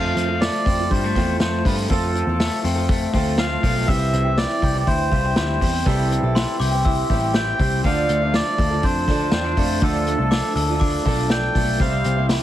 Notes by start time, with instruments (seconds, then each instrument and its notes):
Already playing: picked electric bass F2, clean electric guitar F3 A3, twelve-string acoustic guitar F3 C4 F4 A4, melodica F5
0.16 picked electric bass F2, clean electric guitar F3, hi-hat pedal, open hi-hat
0.28 twelve-string acoustic guitar C4 F4 A4
0.41 clean electric guitar A3, melodica D5, snare, hi-hat pedal, open hi-hat
0.66 picked electric bass F2, clean electric guitar C4, kick, hi-hat pedal, open hi-hat
0.78 twelve-string acoustic guitar C4 F4 A4
0.91 picked electric bass G2, clean electric guitar G3, melodica C5, kick, hi-hat pedal, open hi-hat
1.04 clean electric guitar A3
1.15 picked electric bass E2, twelve-string acoustic guitar F3 C4 F4 A4, clean electric guitar C4, kick, snare, hi-hat pedal, open hi-hat
1.40 picked electric bass F2, twelve-string acoustic guitar F3 C4 F4 A4, clean electric guitar A3, melodica C5, snare, hi-hat pedal, open hi-hat
1.65 picked electric bass G2, clean electric guitar F3, twelve-string acoustic guitar F3 C4 F4 A4, melodica B4, kick, hi-hat pedal, open hi-hat
1.90 picked electric bass F2, twelve-string acoustic guitar F3 C4 F4 A4, clean electric guitar F3, melodica A4, kick, hi-hat pedal, open hi-hat
2.15 clean electric guitar F3, hi-hat pedal, open hi-hat
2.27 picked electric bass E2, twelve-string acoustic guitar C4 F4 A4
2.40 clean electric guitar A3, snare, hi-hat pedal, open hi-hat
2.64 picked electric bass F2, clean electric guitar C4, hi-hat pedal, open hi-hat
2.75 twelve-string acoustic guitar C4 F4 A4
2.89 clean electric guitar A3, kick, hi-hat pedal, open hi-hat
3.13 picked electric bass D2, twelve-string acoustic guitar F3 C4 F4 A4, clean electric guitar C4, kick, hi-hat pedal, open hi-hat
3.38 twelve-string acoustic guitar F3 C4 F4 A4, clean electric guitar A3, melodica F5, snare, hi-hat pedal, open hi-hat
3.63 picked electric bass B1, clean electric guitar F3, twelve-string acoustic guitar F3 C4 F4 A4, kick, hi-hat pedal, open hi-hat
3.87 picked electric bass C2, twelve-string acoustic guitar C3 G3 C4 E4 G4, clean electric guitar E3, melodica E5, kick, hi-hat pedal, open hi-hat
4.13 picked electric bass C2, clean electric guitar C4, hi-hat pedal, open hi-hat
4.25 twelve-string acoustic guitar C4 E4 G4
4.37 clean electric guitar E4, melodica D5, snare, hi-hat pedal, open hi-hat
4.62 picked electric bass C2, clean electric guitar G4, kick, hi-hat pedal, open hi-hat
4.74 twelve-string acoustic guitar C4 E4 G4
4.80 melodica D5
4.87 picked electric bass D2, clean electric guitar E4, melodica C5, kick, hi-hat pedal, open hi-hat
5.11 picked electric bass C2, twelve-string acoustic guitar G3 C4 E4 G4, clean electric guitar F4, kick, hi-hat pedal, open hi-hat
5.25 clean electric guitar G4
5.35 picked electric bass D2, twelve-string acoustic guitar G3 C4 E4 G4, clean electric guitar E4, melodica C5, snare, hi-hat pedal, open hi-hat
5.60 picked electric bass E2, twelve-string acoustic guitar G3 C4 E4 G4, clean electric guitar C4, kick, hi-hat pedal, open hi-hat
5.85 picked electric bass C2, twelve-string acoustic guitar C3 G3 C4 E4 G4, clean electric guitar E3, melodica A4, kick, hi-hat pedal, open hi-hat
6.11 clean electric guitar C4, hi-hat pedal, open hi-hat
6.22 picked electric bass B1, twelve-string acoustic guitar C4 E4 G4
6.35 clean electric guitar E4, glockenspiel C6, snare, hi-hat pedal, open hi-hat
6.60 picked electric bass C2, clean electric guitar G4, glockenspiel D6, hi-hat pedal, open hi-hat
6.72 twelve-string acoustic guitar C4 E4 G4
6.85 clean electric guitar E4, glockenspiel E6, kick, hi-hat pedal, open hi-hat
7.10 picked electric bass A1, twelve-string acoustic guitar G3 C4 E4 G4, clean electric guitar G4, kick, hi-hat pedal, open hi-hat
7.34 twelve-string acoustic guitar G3 C4 E4 G4, clean electric guitar E4, melodica G5, snare, hi-hat pedal, open hi-hat
7.59 picked electric bass C2, twelve-string acoustic guitar G3 C4 E4 G4, clean electric guitar C4, kick, hi-hat pedal, open hi-hat
7.84 picked electric bass D2, twelve-string acoustic guitar D3 F3 D4 F4 A4, clean electric guitar F3, melodica F5, kick, hi-hat pedal, open hi-hat
8.09 picked electric bass D2, clean electric guitar A3, hi-hat pedal, open hi-hat
8.21 twelve-string acoustic guitar D4 F4 A4
8.34 clean electric guitar D4, melodica D5, snare, hi-hat pedal, open hi-hat
8.58 picked electric bass D2, clean electric guitar A4, kick, hi-hat pedal, open hi-hat
8.70 twelve-string acoustic guitar D4 F4 A4
8.83 picked electric bass F2, clean electric guitar D4, melodica C5, kick, hi-hat pedal, open hi-hat
9.08 picked electric bass D2, twelve-string acoustic guitar F3 D4 F4 A4, clean electric guitar A4, kick, snare, hi-hat pedal, open hi-hat
9.31 picked electric bass E2, twelve-string acoustic guitar F3 D4 F4 A4, clean electric guitar C4, melodica C5, snare, hi-hat pedal, open hi-hat
9.45 clean electric guitar D4
9.57 picked electric bass F2, twelve-string acoustic guitar F3 D4 F4 A4, clean electric guitar A3, kick, hi-hat pedal, open hi-hat
9.81 picked electric bass D2, twelve-string acoustic guitar D3 F3 D4 F4 A4, clean electric guitar F3, melodica A4, kick, hi-hat pedal, open hi-hat
10.06 clean electric guitar A3, hi-hat pedal, open hi-hat
10.18 picked electric bass C2, twelve-string acoustic guitar D4 F4 A4
10.31 clean electric guitar D4, glockenspiel D6, snare, hi-hat pedal, open hi-hat
10.55 picked electric bass D2, clean electric guitar A4, glockenspiel E6, hi-hat pedal, open hi-hat
10.68 twelve-string acoustic guitar D4 F4 A4
10.80 clean electric guitar D4, glockenspiel D6, kick, hi-hat pedal, open hi-hat
11.05 picked electric bass B1, twelve-string acoustic guitar F3 D4 F4 A4, clean electric guitar A4, kick, hi-hat pedal, open hi-hat
11.29 twelve-string acoustic guitar F3 D4 F4 A4, clean electric guitar D4, melodica G5, snare, hi-hat pedal, open hi-hat
11.54 picked electric bass B1, twelve-string acoustic guitar F3 D4 F4 A4, clean electric guitar A3, kick, hi-hat pedal, open hi-hat
11.79 picked electric bass C2, twelve-string acoustic guitar C3 G3 C4 C5, clean electric guitar G3, melodica F5, kick, hi-hat pedal, open hi-hat
12.04 picked electric bass C2, clean electric guitar C4, hi-hat pedal, open hi-hat
12.16 twelve-string acoustic guitar C4 E4 C5
12.29 clean electric guitar E4, snare, hi-hat pedal, open hi-hat